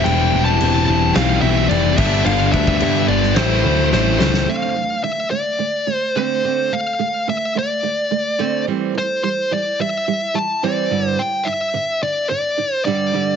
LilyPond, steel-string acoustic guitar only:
\new Staff \with { instrumentName = "Steel-string acoustic guitar" } { \clef bass \time 4/4 \key d \dorian \tempo 4 = 108 r1 | r1 | <d a c'>8 <d a>8 <d a>8 <d a>8 <d a>8 <d a>8 <d a c'>8 <d a c'>8 | <d a>8 <d a>8 <d a>8 <d a>8 <d a>8 <d a>8 <d a c'>8 <e g c'>8 |
<e g>8 <e g>8 <e g>8 <e g>8 <e g>8 <e g>8 <e g c'>8 <g, d g>8 | <g, d>8 <g, d>8 <g, d>8 <g, d>8 <g, d>8 <g, d>8 <g, d g>8 <g, d g>8 | }